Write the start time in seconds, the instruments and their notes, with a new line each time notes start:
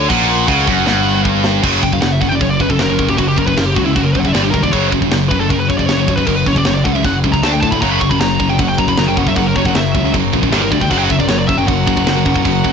Already playing: string section F#3 C#4 A#4, lead electric guitar C#5
0.09 picked electric bass A#1, distorted electric guitar A#2, lead electric guitar F#5, kick, crash
0.29 crash
0.47 picked electric bass C#2, distorted electric guitar C#3, kick, crash
0.66 picked electric bass F#1, distorted electric guitar F#2, kick, crash
0.87 picked electric bass G1, distorted electric guitar G2, snare
1.25 kick
1.44 snare
1.63 picked electric bass F#1, distorted electric guitar F#2 C#3 F#3, kick, crash
1.83 distorted electric guitar F#2 C#3, lead electric guitar G5, kick
1.93 distorted electric guitar F#2 C#3, lead electric guitar F5, kick
2.01 picked electric bass F#1, distorted electric guitar F#2 C#3, lead electric guitar F#5, snare, crash
2.12 lead electric guitar E5
2.21 distorted electric guitar F#2 C#3, lead electric guitar F#5, kick
2.29 distorted electric guitar C#3, lead electric guitar G5
2.33 distorted electric guitar F#2, lead electric guitar D5
2.41 picked electric bass F#1, distorted electric guitar F#2 C#3, lead electric guitar C#5, kick, crash
2.50 lead electric guitar D5
2.60 distorted electric guitar F#2 C#3, lead electric guitar B4, kick
2.70 distorted electric guitar F#2 C#3, lead electric guitar A4, kick
2.79 picked electric bass F#1, distorted electric guitar F#2 C#3, lead electric guitar A#4, snare, crash
2.89 distorted electric guitar F#2 C#3
2.99 picked electric bass F#1, distorted electric guitar F#2 C#3, kick
3.09 distorted electric guitar F#2 C#3, lead electric guitar G4, kick
3.18 picked electric bass F#1, distorted electric guitar F#2 C#3, lead electric guitar F#4, kick, crash
3.28 lead electric guitar G4
3.37 picked electric bass F#1, distorted electric guitar F#2 C#3, lead electric guitar A#4, kick
3.47 distorted electric guitar F#2 C#3, lead electric guitar B4, kick
3.57 picked electric bass F#1, distorted electric guitar F#2 C#3, lead electric guitar A#4, snare, crash
3.66 lead electric guitar G4
3.74 picked electric bass C#2, distorted electric guitar F#2 C#3, lead electric guitar F#4, kick
3.85 distorted electric guitar F#2 C#3, lead electric guitar E4
3.95 picked electric bass F#1, distorted electric guitar F#2 C#3, lead electric guitar F#4, kick, crash
4.03 lead electric guitar A#4
4.12 picked electric bass F#1, distorted electric guitar F#2 C#3, lead electric guitar C#5, kick
4.20 lead electric guitar F#5
4.25 distorted electric guitar F#2 C#3, lead electric guitar E5, kick
4.32 picked electric bass G1, distorted electric guitar G2 D3 G3, lead electric guitar D5, snare, crash
4.43 distorted electric guitar G2 D3, lead electric guitar G4
4.51 picked electric bass E1, distorted electric guitar G2 D3, lead electric guitar A#4, kick
4.63 distorted electric guitar G2 D3, lead electric guitar D5, kick
4.71 picked electric bass F#1, distorted electric guitar F#2 C#3 F#3, lead electric guitar C#5, kick, crash
4.91 distorted electric guitar F#2 C#3, kick
5.01 distorted electric guitar F#2 C#3, kick
5.11 picked electric bass F#1, distorted electric guitar F#2 C#3, snare, crash
5.29 distorted electric guitar F#2 C#3, lead electric guitar B4, kick
5.39 distorted electric guitar F#2 C#3, lead electric guitar A4
5.49 picked electric bass F#1, distorted electric guitar F#2 C#3, lead electric guitar A#4, kick, crash
5.60 lead electric guitar B4
5.68 distorted electric guitar F#2 C#3, lead electric guitar C#5, kick
5.78 distorted electric guitar F#2 C#3, lead electric guitar D5, kick
5.86 picked electric bass F#1, distorted electric guitar F#2 C#3, lead electric guitar C#5, snare, crash
5.97 distorted electric guitar F#2 C#3
6.07 picked electric bass F#1, distorted electric guitar F#2 C#3, kick
6.16 distorted electric guitar F#2 C#3, lead electric guitar B4, kick
6.26 picked electric bass F#1, distorted electric guitar F#2 C#3, lead electric guitar A#4, kick, crash
6.37 lead electric guitar B4
6.46 picked electric bass F#1, distorted electric guitar F#2 C#3, lead electric guitar C#5, kick
6.56 distorted electric guitar F#2 C#3, lead electric guitar D5, kick
6.65 picked electric bass F#1, distorted electric guitar F#2 C#3, lead electric guitar C#5, snare, crash
6.75 lead electric guitar D5
6.84 picked electric bass C#2, distorted electric guitar F#2 C#3, lead electric guitar F#5, kick
6.96 distorted electric guitar F#2 C#3, lead electric guitar E5
7.04 picked electric bass F#1, distorted electric guitar F#2 C#3, lead electric guitar F#5, kick, crash
7.24 picked electric bass C#2, distorted electric guitar F#2 C#3, kick
7.32 distorted electric guitar F#2 C#3, lead electric guitar A#5, kick
7.42 picked electric bass D2, distorted electric guitar D3 A3 D4, lead electric guitar A5, snare, crash
7.52 distorted electric guitar D3 A3, lead electric guitar G5
7.61 picked electric bass A2, distorted electric guitar D3 A3, lead electric guitar A5, kick
7.71 distorted electric guitar D3 A3, lead electric guitar B5, kick
7.81 picked electric bass F#1, distorted electric guitar F#2 C#3 F#3, string section F#3 C#4 F#4 A#4, lead electric guitar A#5, kick, crash
7.91 lead electric guitar B5
8.01 distorted electric guitar F#2 C#3, lead electric guitar C#6, kick
8.10 distorted electric guitar F#2 C#3, lead electric guitar B5, kick
8.20 picked electric bass F#1, distorted electric guitar F#2 C#3, lead electric guitar A#5, snare, crash
8.40 distorted electric guitar F#2 C#3, kick
8.50 distorted electric guitar F#2 C#3, lead electric guitar G5
8.59 picked electric bass F#1, distorted electric guitar F#2 C#3, lead electric guitar F#5, kick, crash
8.69 lead electric guitar G5
8.78 distorted electric guitar F#2 C#3, lead electric guitar A#5, kick
8.88 distorted electric guitar F#2 C#3, lead electric guitar B5, kick
8.97 picked electric bass F#1, distorted electric guitar F#2 C#3, lead electric guitar A#5, snare, crash
9.07 distorted electric guitar F#2 C#3, lead electric guitar G5
9.17 picked electric bass F#1, distorted electric guitar F#2 C#3, lead electric guitar F#5, kick
9.27 distorted electric guitar F#2 C#3, lead electric guitar E5, kick
9.36 picked electric bass F#1, distorted electric guitar F#2 C#3, lead electric guitar F#5, kick, crash
9.47 lead electric guitar A#4
9.56 picked electric bass F#1, distorted electric guitar F#2 C#3, lead electric guitar C#5, kick
9.65 distorted electric guitar F#2 C#3, lead electric guitar F#5, kick
9.75 picked electric bass F#1, distorted electric guitar F#2 C#3, lead electric guitar E5, snare, crash
9.94 picked electric bass C#2, distorted electric guitar F#2 C#3, kick
10.04 distorted electric guitar F#2 C#3
10.14 picked electric bass F#1, distorted electric guitar F#2 C#3, kick, crash
10.33 picked electric bass A#1, distorted electric guitar F#2 C#3, kick
10.42 distorted electric guitar F#2 C#3, kick
10.51 picked electric bass G1, distorted electric guitar G2 D3 G3, string section G3 D4 G4, snare, crash
10.61 distorted electric guitar G2 D3, lead electric guitar A#4
10.71 picked electric bass D2, distorted electric guitar G2 D3, lead electric guitar D5, kick
10.80 distorted electric guitar G2 D3, lead electric guitar G5, kick
10.90 picked electric bass F#1, distorted electric guitar F#2 C#3 F#3, string section F#3 C#4 F#4 A#4, lead electric guitar F#5, kick, crash
10.98 lead electric guitar G5
11.04 lead electric guitar F#5
11.09 distorted electric guitar F#2 C#3, lead electric guitar E5, kick
11.19 distorted electric guitar F#2 C#3, lead electric guitar D5, kick
11.29 picked electric bass F#1, distorted electric guitar F#2 C#3, lead electric guitar C#5, snare, crash
11.39 lead electric guitar D5
11.48 distorted electric guitar F#2 C#3, lead electric guitar E5, kick
11.58 distorted electric guitar F#2 C#3, lead electric guitar G5
11.67 picked electric bass F#1, distorted electric guitar F#2 C#3, lead electric guitar F#5, kick, crash
11.87 distorted electric guitar F#2 C#3, kick
11.96 distorted electric guitar F#2 C#3, kick
12.06 picked electric bass F#1, distorted electric guitar F#2 C#3, snare, crash
12.16 distorted electric guitar F#2 C#3
12.26 picked electric bass F#1, distorted electric guitar F#2 C#3, kick
12.36 distorted electric guitar F#2 C#3, kick
12.45 picked electric bass F#1, distorted electric guitar F#2 C#3, kick, crash
12.65 picked electric bass F#1, distorted electric guitar F#2 C#3, kick